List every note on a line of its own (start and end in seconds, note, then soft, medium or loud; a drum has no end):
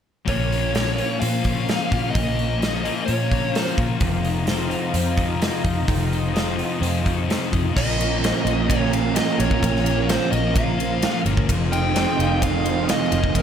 0.25 1.01 A#1 medium
0.25 0.73 A#2 medium
0.25 1.00 A#2 medium
0.25 0.99 F3 medium
0.25 0.74 F3 loud
0.25 0.98 A#3 medium
0.25 0.75 A#3 loud
0.25 1.69 A#3 medium
0.25 0.98 C#4 medium
0.25 7.71 F4 medium
0.25 1.19 C#5 medium
0.25 7.71 A#5 loud
0.25 kick medium
0.25 open hi-hat medium
0.51 1.45 C#4 medium
0.51 open hi-hat soft
0.74 1.19 A#2 medium
0.74 0.99 F3 medium
0.74 0.96 A#3 medium
0.74 snare loud
0.74 open hi-hat medium
0.96 2.14 F3 medium
0.96 1.20 F3 medium
0.96 1.21 A#3 medium
0.96 2.15 A#3 medium
0.96 2.13 C#4 medium
0.96 2.85 F4 medium
0.96 open hi-hat soft
1.00 2.12 A#2 medium
1.20 1.67 A#2 medium
1.20 1.76 A#2 medium
1.20 1.45 F3 medium
1.20 1.42 A#3 medium
1.20 2.42 C5 medium
1.20 2.17 F5 loud
1.20 open hi-hat medium
1.42 1.92 F3 medium
1.42 1.89 A#3 medium
1.42 kick medium
1.42 open hi-hat soft
1.46 1.92 C#4 medium
1.69 2.16 A#3 medium
1.69 snare loud
1.69 open hi-hat medium
1.90 2.10 A#2 medium
1.90 2.15 F3 medium
1.90 2.16 A#3 medium
1.90 2.38 C#4 medium
1.90 kick medium
1.90 open hi-hat medium
2.11 2.83 A#2 medium
2.11 2.57 A#2 medium
2.11 2.84 F3 medium
2.11 3.05 D#5 loud
2.15 2.88 A#1 medium
2.15 2.60 F3 medium
2.15 2.83 A#3 medium
2.15 3.55 A#3 medium
2.15 2.62 A#3 loud
2.15 2.82 C#4 medium
2.15 kick loud
2.15 open hi-hat medium
2.39 3.31 C#4 medium
2.39 open hi-hat soft
2.58 3.04 A#2 medium
2.58 2.85 F3 medium
2.58 2.83 A#3 medium
2.58 open hi-hat medium
2.63 snare loud
2.83 4.00 A#2 medium
2.83 4.00 F3 medium
2.83 3.07 F3 medium
2.83 3.08 A#3 medium
2.83 4.01 A#3 medium
2.83 3.99 C#4 medium
2.83 4.28 F4 medium
2.83 open hi-hat soft
3.06 3.54 A#2 medium
3.06 3.63 A#2 medium
3.06 3.31 F3 medium
3.06 3.28 A#3 medium
3.06 3.53 C#5 medium
3.06 open hi-hat medium
3.28 3.79 F3 medium
3.28 3.76 A#3 medium
3.28 kick medium
3.28 open hi-hat soft
3.33 3.77 C#4 medium
3.53 4.51 A#3 medium
3.53 3.73 C5 medium
3.53 snare loud
3.53 open hi-hat medium
3.76 3.97 A#2 medium
3.76 4.03 F3 medium
3.76 4.05 A#3 medium
3.76 4.02 C#4 medium
3.76 kick medium
3.76 open hi-hat soft
3.99 4.75 F1 medium
3.99 4.72 F2 medium
3.99 4.48 F2 medium
3.99 4.70 C3 medium
3.99 4.49 C3 medium
3.99 4.70 D#3 medium
3.99 4.69 A3 medium
3.99 4.69 C4 medium
3.99 7.72 D#5 medium
3.99 kick loud
3.99 open hi-hat medium
4.03 4.50 F3 medium
4.25 5.17 D#4 medium
4.25 open hi-hat soft
4.47 4.94 F2 medium
4.47 4.71 C3 medium
4.47 4.69 F3 medium
4.47 4.94 C5 medium
4.47 snare medium
4.47 open hi-hat medium
4.70 5.86 F2 medium
4.70 5.87 C3 medium
4.70 4.94 C3 medium
4.70 5.87 D#3 medium
4.70 4.96 F3 medium
4.70 5.87 A3 medium
4.70 5.89 C4 medium
4.70 6.16 F4 medium
4.70 open hi-hat soft
4.94 5.49 F2 medium
4.94 5.41 F2 medium
4.94 5.17 C3 medium
4.94 5.16 F3 medium
4.94 6.12 C5 medium
4.94 open hi-hat medium
5.16 5.65 C3 medium
5.16 5.64 F3 medium
5.16 5.63 D#4 medium
5.16 kick medium
5.16 open hi-hat medium
5.42 snare loud
5.42 open hi-hat medium
5.64 5.83 F2 medium
5.64 5.86 C3 medium
5.64 5.88 F3 medium
5.64 6.11 D#4 medium
5.64 kick medium
5.64 open hi-hat medium
5.86 6.62 F1 medium
5.86 6.31 F2 medium
5.86 6.57 F2 medium
5.86 6.32 C3 loud
5.86 6.57 C3 medium
5.86 6.58 D#3 medium
5.86 6.34 F3 loud
5.86 6.58 A3 medium
5.86 6.57 C4 loud
5.86 kick loud
5.86 open hi-hat medium
6.13 7.04 D#4 medium
6.13 open hi-hat soft
6.33 6.77 F2 medium
6.33 6.57 C3 medium
6.33 6.55 F3 medium
6.33 6.80 C5 medium
6.33 open hi-hat medium
6.37 snare loud
6.56 6.79 C3 medium
6.56 6.80 F3 medium
6.56 7.75 A3 medium
6.56 7.74 C4 medium
6.56 7.75 F4 medium
6.56 open hi-hat soft
6.60 7.75 F2 medium
6.60 7.74 C3 medium
6.60 7.75 D#3 medium
6.79 7.27 F2 medium
6.79 7.36 F2 medium
6.79 7.04 C3 loud
6.79 7.01 F3 medium
6.79 7.75 C5 medium
6.83 open hi-hat medium
7.02 7.52 C3 medium
7.02 7.50 F3 medium
7.02 7.52 D#4 medium
7.06 kick medium
7.06 open hi-hat soft
7.30 snare loud
7.30 open hi-hat medium
7.51 7.71 F2 loud
7.51 7.74 C3 soft
7.51 7.74 F3 medium
7.51 7.76 D#4 medium
7.51 kick medium
7.51 open hi-hat medium
7.74 8.31 A#1 loud
7.74 8.20 A#2 medium
7.74 11.48 A#2 medium
7.74 8.22 F3 medium
7.74 11.49 F3 medium
7.74 9.63 A#3 medium
7.74 8.23 A#3 loud
7.74 11.49 A#3 medium
7.74 13.42 F4 medium
7.74 11.45 A#4 medium
7.74 8.70 D#5 loud
7.74 11.45 A#5 medium
7.74 kick loud
7.74 crash loud
7.78 11.50 C#4 medium
8.00 8.45 C#4 medium
8.00 ride medium
8.20 8.68 A#2 medium
8.20 8.69 F3 medium
8.20 8.71 A#3 medium
8.20 9.42 C5 medium
8.20 ride medium
8.25 snare loud
8.45 9.18 A#1 medium
8.45 9.38 C#4 medium
8.45 ride medium
8.69 9.58 A#2 loud
8.69 9.40 F3 loud
8.69 9.38 A#3 loud
8.69 9.15 F4 medium
8.69 8.93 C#5 loud
8.69 kick loud
8.69 ride loud
8.93 9.17 F5 medium
8.93 ride medium
9.14 10.56 F4 medium
9.14 9.39 D#5 medium
9.14 snare loud
9.14 ride loud
9.38 9.58 A#1 loud
9.38 9.61 F3 medium
9.38 9.62 A#3 medium
9.38 9.86 C#4 medium
9.38 10.10 C#5 medium
9.38 ride medium
9.51 kick medium
9.59 10.17 A#1 loud
9.59 10.05 A#2 medium
9.59 10.07 F3 loud
9.59 10.09 A#3 loud
9.59 kick loud
9.63 10.81 A#3 medium
9.63 ride loud
9.76 snare soft
9.86 10.31 C#4 medium
9.86 ride medium
10.06 10.52 A#2 medium
10.06 10.54 F3 medium
10.06 10.55 A#3 medium
10.06 10.77 C5 medium
10.06 10.31 C5 medium
10.06 snare loud
10.06 ride medium
10.32 11.05 A#1 medium
10.32 11.23 C#4 medium
10.32 10.56 D#5 medium
10.32 ride medium
10.53 11.46 A#2 medium
10.53 11.27 F3 loud
10.53 11.24 A#3 loud
10.53 11.02 F4 medium
10.53 11.21 F5 medium
10.53 kick loud
10.53 ride medium
10.78 11.94 C5 medium
10.78 ride medium
11.02 11.75 F4 medium
11.02 snare loud
11.02 ride medium
11.24 11.43 G1 loud
11.24 11.50 F3 soft
11.24 11.52 A#3 medium
11.24 11.48 C#4 medium
11.24 ride medium
11.37 kick medium
11.47 12.04 F1 medium
11.47 13.42 F2 medium
11.47 11.92 F2 loud
11.47 13.42 C3 medium
11.47 11.93 C3 medium
11.47 13.42 D#3 medium
11.47 11.95 F3 loud
11.47 13.42 A3 medium
11.47 13.42 D#4 medium
11.47 13.42 C5 medium
11.47 13.42 D#5 medium
11.47 13.42 F5 medium
11.47 kick loud
11.47 ride loud
11.72 12.18 D#4 medium
11.72 12.43 G5 medium
11.72 ride medium
11.93 12.38 F2 medium
11.93 12.40 C3 medium
11.93 12.42 F3 medium
11.93 12.64 C5 medium
11.93 snare loud
11.93 ride medium
12.19 12.92 F1 medium
12.19 13.10 D#4 medium
12.19 ride medium
12.39 13.33 F2 loud
12.39 13.12 C3 loud
12.39 13.11 F3 loud
12.39 12.88 F4 medium
12.39 kick loud
12.39 ride loud
12.43 12.90 F5 loud
12.64 13.42 C5 medium
12.64 ride medium
12.88 13.42 F4 medium
12.88 13.37 D#5 medium
12.88 snare loud
12.88 ride loud
13.11 13.30 F1 loud
13.11 13.34 C3 soft
13.11 13.37 F3 medium
13.11 13.42 D#4 medium
13.11 ride medium
13.24 kick medium
13.34 13.42 F1 loud
13.34 13.42 F2 medium
13.34 13.42 C3 loud
13.34 13.42 F3 loud
13.34 kick loud
13.34 ride medium
13.38 13.42 A#4 loud